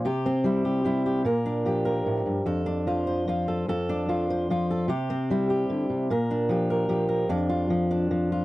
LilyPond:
\new Staff \with { instrumentName = "Steel-string acoustic guitar" } { \time 3/4 \key f \major \tempo 4 = 149 << { g'8 c'8 e'8 g'8 e'8 g'8 | bes'8 d'8 g'8 bes'4. | a'8 d'8 f'8 c''8 f'8 a'8 | a'8 d'8 f'8 c''8 f'8 a'8 |
g'8 c'8 e'8 g'4. | bes'8 d'8 g'8 bes'8 g'8 bes'8 | d'8 f'4 d'4 f'8 | } \\ { c4 g4 g4 | bes,4 f4 a,8 g,8 | f,4 f4 f4 | f,4 f4 f4 |
c4 g4 d8 c8 | bes,4 f4 f4 | f,4 f4 f4 | } >> }